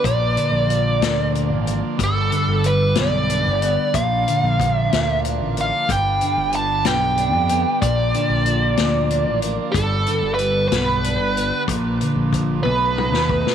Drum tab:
HH |x-x-x-x-x-x-|x-x-x-x-x-x-|x-x-x-x-x-x-|x-x-x-x-x-x-|
SD |------o-----|------o-----|------o-----|------o-----|
T1 |------------|------------|------------|------------|
T2 |------------|------------|------------|------------|
BD |o-----------|o-----------|o---o-------|o-----------|

HH |x-x-x-x-x-x-|x-x-x-x-x-x-|x-x-x-------|
SD |------o-----|------o-----|---------o-o|
T1 |------------|------------|------o-----|
T2 |------------|------------|--------o---|
BD |o-----------|o-----------|o---o-----o-|